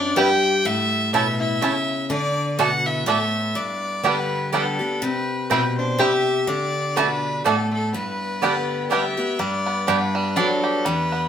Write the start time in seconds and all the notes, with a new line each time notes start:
Already playing: F#2 D4 D5
0.16 G2 G3 B3 E4 G4 B4 G5
0.65 A2 E4 E5
1.13 B2 A3 C#4 E4 C#5 E5 A5
1.40 E4 E5
1.61 C#3 A3 C#4 E4 C#5 A5
2.10 D3 D4 D5
2.59 B2 A3 D4 F#4 D5 F#5 A5
2.86 E4 E5
3.06 A2 A3 D4 F#4 A4 D5 E5 A5
3.55 G2 D4 D5
4.03 D3 G3 B3 D4 G4 B4 D5 G5
4.52 D3 G3 B3 D4 G4 A4 D5 G5
4.79 B3 G4
5.02 C3 C4 B4
5.50 B2 G3 C4 E4 B4 C5 G5
5.78 D4 C5
5.98 C3 G3 C4 E4 G4 C5 E5 G5
6.47 D3 D4 D5
6.96 B2 A3 D4 F#4 B4 D5 A5
7.44 A2 A3 D4 F#4 A4 D5 A5
7.71 A3 A4
7.93 G2 B3 B4
8.42 D3 G3 B3 D4 G4 D5 G5
8.90 D3 G3 B3 D4 G4 D5 E5 G5
9.17 B3 G4
9.38 G2 G3 D4 D5
9.66 B3
9.87 G2 B3 D4 G4 B4 D5 G5
10.15 G3
10.36 F#3 B3 D4 G4 A4 D5 G5
10.64 G4
10.84 E2 G3 B3 B4
11.12 B3